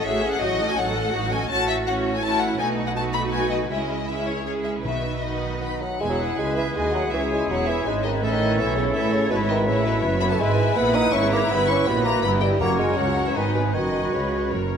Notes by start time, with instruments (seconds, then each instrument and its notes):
0.04 double bass section A1, viola section A3 F#4, violin section F#4 C#5 E5, cello section G#4
0.23 viola section C#4 A4, violin section A4 F#5
0.32 violin section F#5
0.41 double bass section A1, viola section F#3 D#4, cello section F#4, violin section F#4 C#5 D#5
0.59 viola section A3 C#4, violin section A4 D#5
0.69 violin section G#5
0.77 double bass section A1, viola section F#3 D#4, violin section F#4 C#5 F#5, cello section A4
0.94 viola section A3 C#4, violin section A4 D#5
1.12 double bass section A1, viola section F#3 D#4, violin section F#4 C#5, cello section F#4
1.31 viola section A3 C#4, violin section A4 D#5 G#5
1.49 double bass section A1, viola section A3 C#4, violin section F#4 C#5 A5, cello section F#4
1.69 violin section E5
1.87 viola section A3 C#4, violin section F#4 C#5 F#5
2.14 violin section G#5
2.22 viola section A3 C#4, cello section E4, violin section F#4 C#5 A5
2.41 violin section F#5
2.59 double bass section B1, viola section A3 D#4, cello section D#4, violin section F#4 B4 G#5
2.87 violin section F#5
2.96 viola section A3 D#4, cello section F#4, violin section F#4 B4 A5
3.14 violin section B5
3.32 violin section G#5
3.50 violin section D#5
3.70 double bass section C#2, viola section G#3 C#4, cello section E4, violin section E4 G#4 E5
3.80 violin section D#5
4.08 viola section G#3 C#4, violin section E4 G#4 E5
4.27 violin section C#5
4.45 viola section G#3 C#4, violin section E4 G#4 C#5, cello section G#4
4.64 violin section E5
4.84 double bass section B1, timpani B2, viola section D#3 D#4, violin section F#4 B4 E5, cello section B4
5.22 viola section D#3 D#4, violin section F#4 B4 D#5
5.61 bassoon B3, violin section B5
5.81 bassoon F#3, violin section F#5
5.99 double bass section E1, cello section E2, bassoon G#3, clarinet E4, viola section E4 B4, french horn section E4 G#4, oboe G#4, flute section B4, violin section E5 G#5
6.09 bassoon F#3, violin section F#5
6.37 cello section C#2, double bass section C#2, bassoon G#3, french horn section E4 G#4, viola section G#4, violin section E5 G#5
6.55 bassoon E3, violin section E5
6.74 cello section D#2, double bass section D#2, bassoon G#3, french horn section E4 G#4, viola section F#4, violin section D#5 G#5
6.93 bassoon F#3, violin section F#5
7.11 cello section C#2, double bass section C#2, bassoon E3, french horn section C#4 G#4, viola section E4 C#5, flute section C#5, violin section E5
7.31 bassoon G#3, violin section G#5
7.48 double bass section E1, cello section E2, bassoon F#3, viola section E4 C#5, violin section E5 F#5
7.67 bassoon E3, violin section E5
7.85 double bass section G#1, cello section G#2, bassoon G#3, french horn section C#4 G#4, viola section D#4 B4, violin section G#5
8.03 bassoon D#3, violin section D#5
8.21 double bass section A1, cello section A2, bassoon E3, french horn section C#4 A4, viola section C#4, clarinet E4, oboe A4, violin section E5
8.31 bassoon D#3, violin section D#5
8.58 double bass section B1, cello section B2, bassoon E3, french horn section C#4 A4, viola section E4 A4, violin section C#5 E5
8.76 bassoon C#3, violin section C#5
8.94 double bass section A1, cello section A2, bassoon E3, french horn section C#4 A4, violin section C#5 E5, viola section C#5
9.13 bassoon C#3, violin section C#5
9.30 double bass section G#1, cello section G#2, bassoon B2, french horn section E4 B4, viola section E4, violin section B4 E5, oboe B4, flute section E5
9.48 bassoon D#3, violin section D#5
9.67 double bass section A1, cello section A2, bassoon C#3, viola section E4 C#5, violin section C#5 E5
9.85 bassoon B2, violin section B4
10.03 double bass section F#1, cello section F#2, viola section F#4
10.20 bassoon B3, violin section B5
10.30 bassoon A3, violin section A5
10.39 double bass section G#1, cello section G#2, bassoon G#3, clarinet E4, viola section E4 B4, french horn section E4 B4, oboe B4, flute section E5, violin section E5 G#5
10.58 viola section E4
10.76 double bass section A#1, cello section A#2, bassoon B3, french horn section E4 B4, violin section F#5 B5
10.94 bassoon D#4, violin section D#6
11.12 double bass section G#1, cello section G#2, bassoon C#4, viola section G#4, violin section E5 C#6
11.31 bassoon A#3, violin section A#5
11.49 double bass section G1, cello section G2, bassoon B3, french horn section E4 B4, viola section B4, violin section B5
11.68 bassoon C#4, violin section C#6
11.86 double bass section A#1, cello section A#2, bassoon B3, viola section F#4 G4, violin section D#5 B5
12.04 bassoon A#3, violin section A#5
12.22 double bass section G1, cello section G2, bassoon B3, french horn section E4 B4, viola section E4 G4, violin section B5
12.40 bassoon G3, violin section G5
12.59 double bass section F#1, timpani F#2, cello section F#2, bassoon A#3, french horn section C#4 F#4, clarinet C#4, viola section F#4 A#4, violin section C#5 A#5, oboe C#5, flute section F#5
12.78 bassoon G#3, violin section G#5
12.97 double bass section C#2, cello section C#2, bassoon F#3, french horn section C#4 F#4, violin section F#5
13.26 bassoon E3, violin section E5
13.35 double bass section G#1, cello section G#2, bassoon D#3, clarinet D#4, viola section D#4 B4, french horn section D#4 B4, oboe B4, violin section D#5, flute section G#5
13.54 bassoon B2, french horn section E4, violin section B4
13.72 double bass section F#1, cello section F#2, bassoon D#3, clarinet F#4, viola section F#4 B4, french horn section F#4 B4, oboe C#5, violin section D#5, flute section B5
14.12 double bass section C#2, cello section C#2, bassoon C#3, french horn section F#4 B4, violin section C#5
14.51 double bass section F#1, cello section F#2, french horn section F#4 A#4, viola section F#4 A#4, violin section C#5, flute section A#5